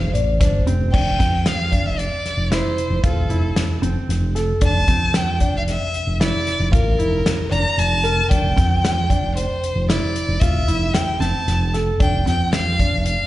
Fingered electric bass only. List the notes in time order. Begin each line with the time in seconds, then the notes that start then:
0.13 A1
0.41 G1
0.66 F1
0.94 F1
1.20 F2
1.84 F1
2.37 F1
2.90 F1
3.04 E1
3.30 F1
3.82 F1
4.09 F1
4.62 F1
4.88 F2
5.53 F1
6.07 F1
6.60 F1
6.73 A1
6.99 F1
7.52 F1
7.78 F1
8.31 F1
8.57 F2
9.22 F1
9.76 F1
10.28 F1
10.41 E1
10.68 F1
11.20 F1
11.47 F1
12.01 F1
12.27 F2
12.94 F1